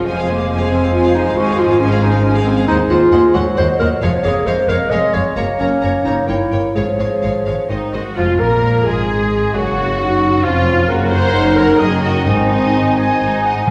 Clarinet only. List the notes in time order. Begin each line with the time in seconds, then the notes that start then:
0.28 A#3
0.72 C4
0.93 F4
1.15 D#4
1.37 F#4
1.59 F4
1.80 C#4
2.02 D#4
2.24 C#4
2.45 C4
2.68 D#4
2.90 F4
3.35 F#4
3.58 C5
3.79 A#4
4.24 G#4
4.47 C5
4.69 A#4
4.90 D#5
5.14 C#5
5.59 C#4
6.04 D#4
6.29 E4
6.75 G#4
8.16 F4
8.40 A#4
8.86 G#4
9.54 F#4
10.44 F4
10.88 A#4
12.27 C5
12.75 D#5
12.98 G#5
13.45 F#5